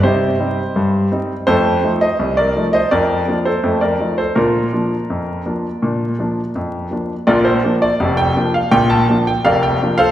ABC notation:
X:1
M:2/4
L:1/16
Q:1/4=83
K:Bb
V:1 name="Grand piano"
[Gc]6 z2 | [Ac]3 [ce]2 [Bd]2 [ce] | [Bd]3 [Ac]2 [Bd]2 [Ac] | [FB]8- |
[FB]4 z4 | [FBd] c2 d2 g2 f | g a2 g [Bdf] g2 [Acf] |]
V:2 name="Grand piano"
[C,E]2 [G,CE]2 G,,2 [G,CE]2 | [F,,A,]2 [F,A,E]2 C,,2 [F,A,E]2 | F,,2 [F,B,D]2 [F,,A,]2 [F,A,E]2 | [B,,D]2 [F,B,D]2 F,,2 [F,B,D]2 |
[B,,D]2 [F,B,D]2 F,,2 [F,B,D]2 | [B,,,B,,]2 [F,B,D]2 [F,,,F,,]2 [F,B,D]2 | [B,,,B,,]2 [F,B,D]2 [F,,,F,,]2 [F,B,D]2 |]